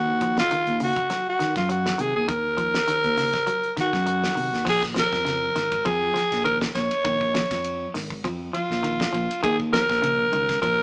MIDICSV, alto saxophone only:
0, 0, Header, 1, 2, 480
1, 0, Start_track
1, 0, Key_signature, -5, "minor"
1, 0, Tempo, 595238
1, 1845, Time_signature, 4, 2, 24, 8
1, 8731, End_track
2, 0, Start_track
2, 0, Title_t, "Alto saxophone"
2, 0, Program_c, 0, 65
2, 0, Note_on_c, 0, 66, 94
2, 276, Note_off_c, 0, 66, 0
2, 318, Note_on_c, 0, 65, 91
2, 633, Note_off_c, 0, 65, 0
2, 675, Note_on_c, 0, 66, 94
2, 1006, Note_off_c, 0, 66, 0
2, 1043, Note_on_c, 0, 66, 84
2, 1254, Note_off_c, 0, 66, 0
2, 1266, Note_on_c, 0, 65, 82
2, 1363, Note_off_c, 0, 65, 0
2, 1380, Note_on_c, 0, 66, 79
2, 1624, Note_on_c, 0, 68, 91
2, 1636, Note_off_c, 0, 66, 0
2, 1739, Note_off_c, 0, 68, 0
2, 1744, Note_on_c, 0, 68, 84
2, 1842, Note_off_c, 0, 68, 0
2, 1850, Note_on_c, 0, 70, 110
2, 3014, Note_off_c, 0, 70, 0
2, 3068, Note_on_c, 0, 66, 84
2, 3743, Note_off_c, 0, 66, 0
2, 3786, Note_on_c, 0, 68, 101
2, 3889, Note_off_c, 0, 68, 0
2, 4028, Note_on_c, 0, 70, 91
2, 4729, Note_on_c, 0, 68, 100
2, 4741, Note_off_c, 0, 70, 0
2, 5196, Note_off_c, 0, 68, 0
2, 5201, Note_on_c, 0, 70, 92
2, 5310, Note_off_c, 0, 70, 0
2, 5444, Note_on_c, 0, 73, 103
2, 6374, Note_off_c, 0, 73, 0
2, 6888, Note_on_c, 0, 65, 83
2, 7576, Note_off_c, 0, 65, 0
2, 7608, Note_on_c, 0, 68, 102
2, 7717, Note_off_c, 0, 68, 0
2, 7847, Note_on_c, 0, 70, 109
2, 8537, Note_off_c, 0, 70, 0
2, 8563, Note_on_c, 0, 70, 104
2, 8731, Note_off_c, 0, 70, 0
2, 8731, End_track
0, 0, End_of_file